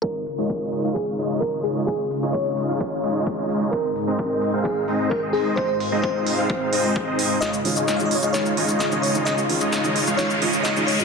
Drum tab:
HH |--o---o---o---o-|--o---o---o---o-|--o---o---o---o-|--o---o---o---o-|
SH |----------------|----------------|----------------|----------------|
SD |----------------|----------------|----------------|----------------|
BD |o---o---o---o---|o---o---o---o---|o---o---o---o---|o---o---o---o---|

HH |xxoxxxo-xxoxxxox|xxoxxxoxxxo-xxo-|
SH |xx-xxx-xxx-xxx-x|xx-xxx-xxx-xxx-x|
SD |o---o---o---o---|o---o---o---o---|
BD |----------------|----------------|